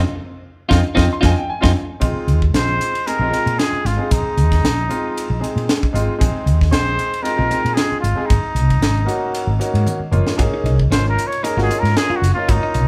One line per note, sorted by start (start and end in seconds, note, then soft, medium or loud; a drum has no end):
0.69 0.81 F2 loud
0.69 0.79 C4 medium
0.69 0.78 D#4 loud
0.69 0.79 D#4 medium
0.69 0.78 F4 medium
0.69 0.79 F4 loud
0.69 kick medium
0.69 snare medium
0.95 1.07 F2 medium
0.95 1.04 C4 loud
0.95 1.05 C4 loud
0.95 1.05 D#4 loud
0.95 1.04 F4 medium
0.95 1.05 F4 loud
0.95 kick medium
0.95 snare medium
1.13 1.23 C6 medium
1.21 1.33 F2 medium
1.21 1.31 C4 medium
1.21 1.32 C4 medium
1.21 1.31 D#4 medium
1.21 1.31 D#4 loud
1.21 1.31 F4 loud
1.21 1.31 F4 medium
1.21 kick medium
1.21 snare medium
1.25 1.38 G#5 medium
1.38 1.49 G5 medium
1.50 1.87 G#5 medium
1.61 1.72 F2 medium
1.61 1.70 C4 medium
1.61 1.70 D#4 medium
1.61 1.69 F4 medium
1.61 1.70 F4 medium
1.61 kick loud
1.61 snare medium
2.00 2.14 A#1 medium
2.00 2.38 G#3 medium
2.00 2.38 C4 medium
2.00 2.38 D#4 medium
2.00 2.39 F4 medium
2.00 kick medium
2.00 hi-hat pedal medium
2.00 ride medium
2.16 muted fretless electric bass stroke soft
2.27 2.52 D#2 medium
2.27 hi-hat pedal medium
2.27 ride medium
2.42 kick medium
2.53 2.78 A#1 medium
2.53 2.91 G#3 medium
2.53 2.92 C4 medium
2.53 2.92 D#4 medium
2.53 2.92 F4 medium
2.53 3.08 C5 loud
2.53 snare medium
2.53 hi-hat pedal medium
2.53 ride medium
2.81 hi-hat pedal medium
2.81 ride medium
2.95 ride medium
3.06 3.16 G#3 medium
3.06 3.16 C4 medium
3.06 3.16 D#4 medium
3.06 3.17 G#4 medium
3.06 3.60 A#4 medium
3.06 hi-hat pedal medium
3.06 ride medium
3.19 3.31 A#1 medium
3.19 3.29 G#3 medium
3.19 3.29 C4 medium
3.19 3.29 D#4 medium
3.19 3.29 F4 medium
3.31 3.78 G#3 medium
3.31 3.78 C4 medium
3.31 3.78 D#4 medium
3.31 3.78 F4 medium
3.31 hi-hat pedal medium
3.31 ride medium
3.46 3.57 A#2 medium
3.46 ride medium
3.58 3.88 G#4 medium
3.58 snare medium
3.58 hi-hat pedal medium
3.58 ride medium
3.73 muted fretless electric bass stroke soft
3.85 3.98 G#1 medium
3.85 4.13 F4 medium
3.85 snare soft
3.85 hi-hat pedal medium
3.85 ride medium
3.97 4.61 G#3 medium
3.97 4.62 C4 medium
3.97 4.62 D#4 medium
3.97 4.62 G#4 medium
3.97 muted fretless electric bass stroke soft
4.11 4.24 A#1 medium
4.11 5.69 D#4 medium
4.11 kick loud
4.11 hi-hat pedal medium
4.11 ride medium
4.25 muted fretless electric bass stroke soft
4.37 4.62 D#2 medium
4.37 hi-hat pedal medium
4.37 ride medium
4.52 kick medium
4.52 snare soft
4.52 ride medium
4.64 4.88 A#1 medium
4.64 snare medium
4.64 hi-hat pedal medium
4.64 ride medium
4.89 5.27 G#3 medium
4.89 5.27 C4 medium
4.89 5.27 D#4 medium
4.89 5.27 F4 medium
4.89 hi-hat pedal medium
4.89 ride medium
5.18 hi-hat pedal medium
5.18 ride medium
5.30 5.41 A#1 medium
5.40 5.78 G#3 medium
5.40 5.79 C4 medium
5.40 5.79 D#4 medium
5.40 5.79 G#4 medium
5.40 hi-hat pedal medium
5.40 ride medium
5.56 5.67 A#2 medium
5.56 ride soft
5.69 snare loud
5.69 hi-hat pedal medium
5.69 ride medium
5.83 muted fretless electric bass stroke soft
5.83 kick medium
5.93 6.07 G#1 medium
5.93 6.12 G#3 medium
5.93 6.13 C4 medium
5.93 6.13 D#4 medium
5.93 6.13 F4 medium
5.93 hi-hat pedal medium
5.93 ride soft
6.08 muted fretless electric bass stroke soft
6.19 6.34 A#1 medium
6.19 6.57 G#3 medium
6.19 6.57 C4 medium
6.19 6.58 D#4 medium
6.19 6.58 G#4 medium
6.19 kick loud
6.19 hi-hat pedal medium
6.19 ride medium
6.35 muted fretless electric bass stroke soft
6.46 6.71 D#2 medium
6.46 hi-hat pedal medium
6.46 ride soft
6.61 kick medium
6.61 snare soft
6.71 6.97 A#1 medium
6.71 7.09 G#3 medium
6.71 7.10 C4 medium
6.71 7.10 D#4 medium
6.71 7.10 G#4 medium
6.71 7.24 C5 loud
6.71 snare medium
6.71 hi-hat pedal medium
6.71 ride medium
6.99 hi-hat pedal medium
6.99 ride medium
7.14 ride medium
7.22 7.34 G#3 medium
7.22 7.34 C4 medium
7.22 7.34 D#4 medium
7.22 7.34 F4 medium
7.22 7.76 A#4 medium
7.22 hi-hat pedal medium
7.22 ride medium
7.36 7.50 A#1 medium
7.36 7.46 G#3 medium
7.36 7.46 C4 medium
7.36 7.47 D#4 medium
7.36 7.47 F4 medium
7.49 7.97 G#3 medium
7.49 7.97 C4 medium
7.49 7.97 D#4 medium
7.49 7.97 F4 medium
7.49 hi-hat pedal medium
7.49 ride medium
7.65 7.76 A#2 medium
7.65 ride medium
7.74 8.00 G#4 medium
7.74 snare medium
7.74 hi-hat pedal medium
7.74 ride medium
7.92 muted fretless electric bass stroke soft
8.00 8.17 G#1 medium
8.00 8.27 F4 medium
8.00 hi-hat pedal medium
8.00 ride medium
8.15 8.29 G#3 medium
8.15 8.29 C4 medium
8.15 8.29 D#4 medium
8.15 8.30 G#4 medium
8.15 muted fretless electric bass stroke soft
8.26 9.85 D#4 medium
8.30 8.42 G#1 medium
8.30 kick loud
8.30 hi-hat pedal medium
8.30 ride medium
8.43 muted fretless electric bass stroke soft
8.55 8.80 C2 medium
8.55 hi-hat pedal medium
8.55 ride medium
8.70 kick medium
8.70 ride medium
8.81 9.06 G#1 medium
8.81 snare medium
8.81 hi-hat pedal medium
8.81 ride medium
9.05 9.45 A#3 medium
9.05 9.45 C#4 medium
9.05 9.45 D#4 medium
9.05 9.45 F#4 medium
9.05 hi-hat pedal medium
9.05 ride medium
9.34 hi-hat pedal medium
9.34 ride medium
9.47 9.59 G#1 medium
9.59 9.98 A#3 medium
9.59 9.98 C#4 medium
9.59 9.98 D#4 medium
9.59 9.98 F#4 medium
9.59 hi-hat pedal medium
9.59 ride medium
9.74 9.86 G#2 medium
9.74 ride medium
9.87 hi-hat pedal medium
9.87 high tom medium
10.00 muted fretless electric bass stroke soft
10.11 10.26 F#1 medium
10.11 10.31 A#3 medium
10.11 10.31 C#4 medium
10.11 10.32 D#4 medium
10.11 10.32 F4 medium
10.11 hi-hat pedal medium
10.11 mid tom medium
10.26 muted fretless electric bass stroke soft
10.26 snare medium
10.37 10.51 G#1 medium
10.37 10.76 A#3 medium
10.37 10.76 C#4 medium
10.37 10.76 D#4 medium
10.37 10.46 F#4 medium
10.37 10.76 G#4 medium
10.37 kick loud
10.37 hi-hat pedal medium
10.37 ride medium
10.52 10.60 D#4 medium
10.52 muted fretless electric bass stroke soft
10.64 10.89 C2 medium
10.64 10.80 D#4 medium
10.64 hi-hat pedal medium
10.64 ride soft
10.80 kick medium
10.90 11.16 G#1 medium
10.90 11.29 A#3 medium
10.90 11.29 C#4 medium
10.90 11.05 C#4 medium
10.90 11.30 D#4 medium
10.90 11.30 F4 medium
10.90 11.08 C5 medium
10.90 snare medium
10.90 hi-hat pedal medium
10.90 ride medium
11.09 11.29 A#4 medium
11.18 hi-hat pedal medium
11.18 ride soft
11.27 11.45 C#5 medium
11.32 ride medium
11.43 11.54 A#3 medium
11.43 11.54 C#4 medium
11.43 11.54 D#4 medium
11.43 11.51 D#4 medium
11.43 11.54 G#4 medium
11.43 11.62 A#4 medium
11.43 hi-hat pedal medium
11.43 ride medium
11.57 11.69 G#1 medium
11.57 11.66 A#3 medium
11.57 11.67 C#4 medium
11.57 11.67 D#4 medium
11.57 11.72 F4 medium
11.57 11.67 F#4 medium
11.57 snare soft
11.62 11.81 G#4 medium
11.69 12.16 A#3 medium
11.69 12.17 C#4 medium
11.69 12.17 D#4 medium
11.69 12.17 F4 medium
11.69 hi-hat pedal medium
11.69 ride medium
11.80 11.95 G#2 medium
11.80 11.99 A#4 medium
11.85 snare soft
11.85 ride medium
11.97 12.18 G#4 medium
11.97 snare medium
11.97 hi-hat pedal medium
11.97 ride medium
12.10 12.24 F4 medium
12.10 muted fretless electric bass stroke soft
12.16 12.33 F#4 medium
12.22 12.36 F#1 medium
12.22 snare soft
12.22 hi-hat pedal medium
12.22 ride medium
12.34 12.88 A#3 medium
12.34 12.88 C#4 medium
12.34 12.88 D#4 medium
12.34 12.52 F4 medium
12.34 12.88 F4 medium
12.34 muted fretless electric bass stroke soft
12.49 12.62 G#1 medium
12.49 12.88 D#4 medium
12.49 12.56 F#4 medium
12.49 kick loud
12.49 hi-hat pedal medium
12.49 ride medium
12.63 12.70 D#4 medium
12.63 muted fretless electric bass stroke soft
12.74 12.88 C2 medium
12.74 12.88 D#4 medium
12.74 hi-hat pedal medium
12.74 ride medium